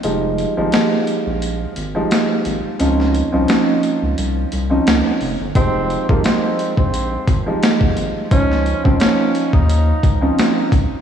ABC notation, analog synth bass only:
X:1
M:4/4
L:1/16
Q:"Swing 16ths" 1/4=87
K:Fm
V:1 name="Analog synth bass" clef=bass
F,,,3 A,,, z3 B,,,3 A,,,2 z2 A,,, z | D,,3 C,, z3 D,, C,,2 C,,2 D,, z F,,, G,,, | F,,,3 A,,, z3 B,,,3 A,,,2 z2 A,,, z | D,,3 D,, z3 E,,3 D,,2 z2 D,, z |]